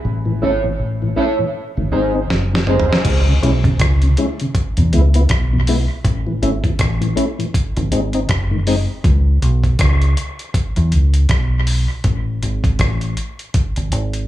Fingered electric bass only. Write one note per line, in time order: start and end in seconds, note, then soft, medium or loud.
0.05 0.39 A1 medium
0.42 0.77 G#1 medium
0.79 1.14 A1 medium
1.77 1.91 G#1 medium
1.92 2.27 G#1 medium
2.30 2.85 F#1 medium
3.05 3.39 C#2 loud
3.42 3.77 B1 medium
3.80 4.14 C#2 loud
4.77 4.91 E2 loud
4.93 5.27 C#2 medium
5.30 5.86 B1 medium
6.05 6.39 A1 loud
6.42 6.76 G#1 medium
6.80 7.14 A1 loud
7.77 7.91 G#1 loud
7.92 8.26 G#1 loud
8.30 8.85 F#1 medium
9.04 9.39 C#2 loud
9.42 9.76 B1 medium
9.79 10.14 C#2 loud
10.77 10.91 E2 loud
10.93 11.27 C#2 medium
11.30 11.85 B1 medium
12.05 12.39 A1 loud
12.43 12.77 G#1 medium
12.79 13.14 A1 loud
13.77 13.91 G#1 loud
13.92 14.26 G#1 loud